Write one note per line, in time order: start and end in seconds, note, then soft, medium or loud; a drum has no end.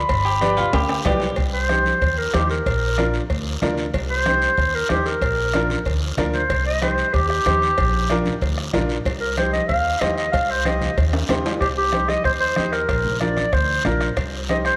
0.00 1.02 B5 medium
0.09 0.61 G1 loud
0.09 bombo low medium
0.09 cowbell loud
0.09 long guiro medium
0.25 0.57 G4 loud
0.41 0.64 G4 medium
0.41 0.64 B4 medium
0.41 0.64 D5 medium
0.41 bombo rim medium
0.41 cowbell medium
0.41 high conga medium
0.41 short guiro medium
0.57 0.74 F4 medium
0.57 low conga medium
0.57 short guiro medium
0.73 0.99 D2 loud
0.73 0.89 G4 loud
0.73 bombo low medium
0.73 cowbell medium
0.73 high timbale loud
0.73 long guiro medium
0.89 1.05 G4 medium
0.89 bombo rim medium
0.89 high timbale medium
1.05 1.31 B1 medium
1.05 1.28 G4 medium
1.05 1.36 G4 medium
1.05 1.28 B4 medium
1.05 1.28 D5 medium
1.05 bombo low medium
1.05 bombo rim medium
1.05 cowbell medium
1.05 high conga medium
1.05 low conga medium
1.05 low timbale medium
1.05 short guiro medium
1.20 low timbale medium
1.20 short guiro medium
1.36 1.89 C2 medium
1.36 bombo low medium
1.36 cowbell medium
1.36 long guiro medium
1.54 2.19 C5 loud
1.69 1.92 D#4 medium
1.69 1.92 G4 medium
1.69 1.92 C5 medium
1.69 bombo rim medium
1.69 cowbell medium
1.69 high conga medium
1.69 short guiro medium
1.86 high conga medium
1.86 short guiro medium
2.01 2.27 D#2 medium
2.01 bombo low medium
2.01 cowbell medium
2.01 long guiro medium
2.18 2.36 A#4 medium
2.33 2.60 D#2 medium
2.33 2.56 D#4 medium
2.33 2.56 G4 medium
2.33 2.49 G4 medium
2.33 2.56 C5 medium
2.33 bombo rim medium
2.33 cowbell medium
2.33 high conga medium
2.33 low timbale medium
2.33 short guiro medium
2.50 3.43 A#4 medium
2.50 short guiro medium
2.66 3.17 A#1 medium
2.66 bombo low medium
2.66 cowbell loud
2.66 long guiro medium
2.98 3.20 D4 medium
2.98 3.21 F4 medium
2.98 3.21 A#4 medium
2.98 bombo rim medium
2.98 cowbell medium
2.98 high conga medium
2.98 short guiro medium
3.14 short guiro medium
3.30 3.56 D2 medium
3.30 bombo low medium
3.30 cowbell medium
3.30 long guiro medium
3.62 3.88 D2 medium
3.62 3.84 D4 medium
3.62 3.85 F4 medium
3.62 3.85 A#4 medium
3.62 bombo rim medium
3.62 cowbell medium
3.62 high conga medium
3.62 low conga medium
3.62 low timbale medium
3.62 short guiro medium
3.77 short guiro medium
3.94 4.45 C2 medium
3.94 bombo low medium
3.94 cowbell loud
3.94 long guiro medium
4.10 4.76 C5 loud
4.26 4.49 D#4 medium
4.26 4.49 G4 medium
4.26 4.49 C5 medium
4.26 bombo rim medium
4.26 cowbell medium
4.26 high conga medium
4.26 short guiro medium
4.42 short guiro medium
4.58 4.83 D#2 medium
4.58 bombo low medium
4.58 cowbell medium
4.58 long guiro medium
4.75 4.90 A#4 medium
4.89 5.16 D#2 medium
4.89 5.13 D#4 medium
4.89 5.08 G4 medium
4.89 5.13 G4 medium
4.89 5.13 C5 medium
4.89 bombo rim medium
4.89 cowbell medium
4.89 high conga medium
4.89 low timbale medium
4.89 short guiro medium
5.06 5.99 A#4 medium
5.06 short guiro medium
5.21 5.73 A#1 medium
5.21 bombo low medium
5.21 cowbell loud
5.21 long guiro medium
5.53 5.77 D4 medium
5.53 5.77 F4 medium
5.53 5.77 A#4 medium
5.53 bombo rim medium
5.53 cowbell medium
5.53 high conga medium
5.53 short guiro medium
5.70 high conga medium
5.70 short guiro medium
5.85 6.12 D2 medium
5.85 bombo low medium
5.85 cowbell medium
5.85 long guiro medium
6.17 6.43 D2 medium
6.17 6.40 D4 medium
6.17 6.41 F4 medium
6.17 6.41 A#4 medium
6.17 bombo low medium
6.17 bombo rim medium
6.17 cowbell medium
6.17 high conga medium
6.17 low conga medium
6.17 short guiro medium
6.34 6.65 C5 medium
6.34 short guiro medium
6.50 7.01 C2 medium
6.50 bombo low medium
6.50 cowbell loud
6.50 long guiro medium
6.66 6.81 D#5 medium
6.82 7.05 D#4 medium
6.82 7.05 G4 medium
6.82 7.15 C5 medium
6.82 7.05 C5 medium
6.82 bombo rim medium
6.82 cowbell medium
6.82 high conga medium
6.82 short guiro medium
6.98 short guiro medium
7.13 7.39 D#2 medium
7.13 7.28 G4 medium
7.13 bombo low medium
7.13 cowbell medium
7.13 long guiro medium
7.29 8.22 G4 loud
7.29 bombo rim medium
7.45 7.72 D#2 medium
7.45 7.68 D#4 medium
7.45 7.68 G4 medium
7.45 7.68 C5 medium
7.45 bombo rim medium
7.45 cowbell medium
7.45 high conga medium
7.45 short guiro medium
7.62 short guiro medium
7.78 8.29 A#1 loud
7.78 bombo low medium
7.78 cowbell loud
7.78 long guiro medium
8.10 8.33 D4 medium
8.10 8.33 F4 medium
8.10 8.33 A#4 loud
8.10 bombo rim medium
8.10 cowbell medium
8.10 high conga medium
8.10 short guiro medium
8.25 high conga medium
8.25 low conga medium
8.25 short guiro medium
8.41 8.67 D2 loud
8.41 bombo low medium
8.41 cowbell medium
8.41 long guiro medium
8.58 bombo rim medium
8.73 8.99 A#1 medium
8.73 8.96 D4 medium
8.73 8.96 F4 medium
8.73 8.96 A#4 medium
8.73 bombo rim medium
8.73 cowbell medium
8.73 high conga medium
8.73 low conga medium
8.73 low timbale medium
8.73 short guiro medium
8.89 short guiro medium
9.05 9.57 C2 loud
9.05 bombo low medium
9.05 cowbell loud
9.05 long guiro medium
9.21 9.37 A#4 medium
9.37 9.60 D#4 medium
9.37 9.60 G4 medium
9.37 9.52 C5 medium
9.37 9.61 C5 medium
9.37 bombo rim medium
9.37 cowbell medium
9.37 high conga medium
9.37 short guiro medium
9.53 9.67 D#5 medium
9.53 high conga medium
9.53 short guiro medium
9.68 9.95 D#2 medium
9.68 10.02 F5 loud
9.68 bombo low medium
9.68 cowbell medium
9.68 long guiro medium
10.00 10.27 D#2 loud
10.00 10.24 D#4 medium
10.00 10.24 G4 medium
10.00 10.24 C5 medium
10.00 10.16 D#5 medium
10.00 bombo rim loud
10.00 cowbell medium
10.00 high conga medium
10.00 low timbale medium
10.00 short guiro medium
10.17 10.31 D#5 medium
10.17 short guiro medium
10.32 10.85 C2 loud
10.32 10.52 F5 medium
10.32 bombo low medium
10.32 cowbell loud
10.32 long guiro medium
10.51 10.67 C5 medium
10.65 10.88 D#4 medium
10.65 10.88 G4 medium
10.65 10.88 C5 medium
10.65 10.97 D#5 medium
10.65 bombo rim medium
10.65 cowbell medium
10.65 high conga medium
10.65 short guiro medium
10.81 high conga medium
10.81 low conga medium
10.81 short guiro medium
10.97 11.23 D#2 loud
10.97 bombo low medium
10.97 cowbell medium
10.97 long guiro medium
11.13 bombo rim medium
11.13 high timbale loud
11.29 11.55 D#2 medium
11.29 11.52 D#4 medium
11.29 11.52 G4 medium
11.29 11.52 C5 medium
11.29 bombo rim medium
11.29 cowbell medium
11.29 high conga medium
11.29 low conga medium
11.29 high timbale loud
11.29 short guiro medium
11.46 low timbale medium
11.46 short guiro medium
11.61 12.12 C2 medium
11.61 11.68 G4 medium
11.61 bombo low medium
11.61 bombo rim medium
11.61 cowbell loud
11.61 long guiro medium
11.77 12.11 G4 medium
11.92 12.16 D#4 medium
11.92 12.16 G4 medium
11.92 12.16 C5 medium
11.92 bombo rim medium
11.92 high conga medium
11.92 short guiro medium
12.08 12.24 D#5 medium
12.08 bombo rim medium
12.08 high conga medium
12.08 short guiro medium
12.24 12.50 D#2 medium
12.24 12.32 C5 loud
12.24 bombo low medium
12.24 bombo rim medium
12.24 cowbell medium
12.24 long guiro medium
12.40 12.74 C5 loud
12.56 12.83 D#2 medium
12.56 12.80 D#4 medium
12.56 12.80 G4 medium
12.56 12.80 D#5 medium
12.56 bombo rim medium
12.56 high conga medium
12.56 short guiro medium
12.72 13.19 A#4 medium
12.72 bombo rim medium
12.72 short guiro medium
12.89 13.40 A#1 medium
12.89 bombo low medium
12.89 bombo rim medium
12.89 cowbell loud
12.89 long guiro medium
13.05 low conga medium
13.20 13.43 D4 medium
13.20 13.44 F4 medium
13.20 13.44 A#4 medium
13.20 13.54 D5 medium
13.20 bombo rim medium
13.20 high conga medium
13.20 short guiro medium
13.37 bombo rim medium
13.37 high conga medium
13.37 short guiro medium
13.53 13.79 D2 loud
13.53 13.85 C5 loud
13.53 bombo low medium
13.53 bombo rim medium
13.53 cowbell medium
13.53 long guiro medium
13.85 14.11 A#1 medium
13.85 14.08 D4 medium
13.85 14.08 F4 medium
13.85 14.08 A#4 medium
13.85 bombo rim medium
13.85 high conga medium
13.85 low conga medium
13.85 short guiro medium
14.01 bombo rim medium
14.01 short guiro medium
14.17 14.68 C2 medium
14.17 bombo low medium
14.17 bombo rim medium
14.17 cowbell loud
14.17 long guiro medium
14.49 14.72 D#4 medium
14.49 14.72 G4 medium
14.49 14.72 C5 medium
14.49 14.57 D#5 medium
14.49 bombo rim medium
14.49 high conga medium
14.49 short guiro medium
14.65 14.77 C5 medium
14.65 bombo rim medium
14.65 short guiro medium